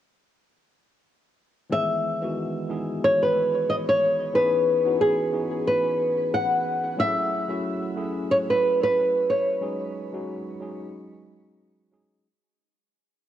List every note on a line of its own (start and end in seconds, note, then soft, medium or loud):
1.70 2.18 D#3 medium
1.70 2.17 E3 medium
1.70 2.17 G#3 medium
1.70 2.18 B3 medium
1.70 2.18 G#4 medium
1.70 3.04 E5 loud
2.22 2.67 D#3 medium
2.22 2.66 E3 medium
2.22 2.66 G#3 medium
2.22 2.66 B3 medium
2.22 2.67 F#4 medium
2.69 2.94 E3 medium
2.69 2.95 G#3 medium
2.69 2.95 B3 medium
2.69 2.95 D#4 medium
2.69 2.95 G#4 medium
3.04 3.22 C#5 loud
3.23 3.70 B4 medium
3.70 3.75 D#5 medium
3.89 4.36 C#5 medium
4.33 4.81 E3 medium
4.33 4.81 B3 medium
4.33 4.82 C#4 medium
4.33 4.82 D#4 medium
4.33 4.82 G#4 medium
4.33 5.01 B4 medium
4.85 5.29 E3 medium
4.85 5.30 B3 medium
4.85 5.30 C#4 medium
4.85 5.30 D#4 medium
4.85 5.30 F#4 medium
5.01 5.67 G#4 medium
5.32 5.58 E3 medium
5.32 5.58 B3 medium
5.32 5.58 C#4 medium
5.32 5.59 D#4 medium
5.32 5.59 G#4 medium
5.67 6.35 B4 medium
6.34 6.99 F#5 medium
6.97 7.44 F#3 medium
6.97 7.45 A3 medium
6.97 7.45 C#4 medium
6.97 7.45 E4 medium
6.97 7.45 G#4 medium
6.97 8.27 E5 loud
7.48 7.93 F#3 medium
7.48 7.93 A3 medium
7.48 7.93 C#4 medium
7.48 7.94 E4 medium
7.48 7.94 F#4 medium
7.96 8.22 F#3 medium
7.96 8.22 A3 medium
7.96 8.22 C#4 medium
7.96 8.22 E4 medium
7.96 8.23 G#4 medium
8.31 8.36 C#5 medium
8.50 8.82 B4 medium
8.83 9.31 B4 medium
9.30 11.56 C#5 medium
9.61 10.08 F#3 medium
9.61 10.08 G#3 medium
9.61 10.09 C#4 medium
9.61 10.09 D#4 medium
9.61 10.09 G#4 medium
10.12 10.57 F#3 medium
10.12 10.57 G#3 medium
10.12 10.57 C#4 medium
10.12 10.58 D#4 medium
10.12 10.58 F#4 medium
10.60 10.86 F#3 medium
10.60 10.86 G#3 medium
10.60 10.86 C#4 medium
10.60 10.86 D#4 medium
10.60 10.87 G#4 medium
11.91 12.21 F#3 medium
11.91 12.22 G#3 medium
11.91 12.22 C#4 medium
11.91 12.22 D#4 medium
11.91 12.22 G#4 medium